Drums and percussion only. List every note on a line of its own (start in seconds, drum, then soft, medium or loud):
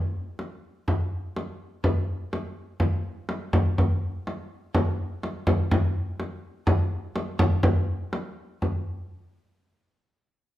0.39 frame drum medium
0.88 frame drum medium
1.36 frame drum medium
1.84 frame drum medium
2.33 frame drum medium
2.80 frame drum medium
3.29 frame drum medium
3.53 frame drum medium
3.78 frame drum medium
4.27 frame drum medium
4.74 frame drum medium
5.23 frame drum medium
5.47 frame drum medium
5.71 frame drum medium
6.20 frame drum medium
6.67 frame drum medium
7.16 frame drum medium
7.39 frame drum loud
7.63 frame drum medium
8.13 frame drum medium
8.62 frame drum medium